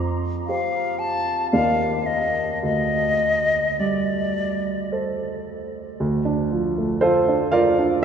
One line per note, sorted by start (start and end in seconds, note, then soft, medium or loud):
0.00 1.49 F2 medium
0.46 1.49 G4 soft
0.46 1.49 C5 soft
0.46 1.00 F5 medium
0.99 1.50 A5 medium
1.51 2.60 D#2 medium
1.51 2.59 A#3 soft
1.51 2.59 D#4 soft
1.51 2.60 G4 soft
1.51 2.60 D5 soft
1.51 2.08 F5 medium
2.06 2.62 D#5 medium
2.63 5.96 D2 soft
2.63 3.81 D#5 medium
3.79 5.58 G3 soft
3.79 4.91 D5 medium
4.92 5.97 A4 soft
4.92 5.97 C5 soft
6.00 8.05 D2 medium
6.25 6.67 D4 soft
6.52 6.93 F3 soft
6.78 7.18 A3 soft
7.01 7.49 F4 medium
7.01 7.48 A4 medium
7.01 7.51 C5 medium
7.28 7.67 D4 medium
7.52 7.98 F4 medium
7.52 7.98 A#4 medium
7.52 7.98 D5 medium
7.52 8.01 F5 loud
7.78 8.05 D4 medium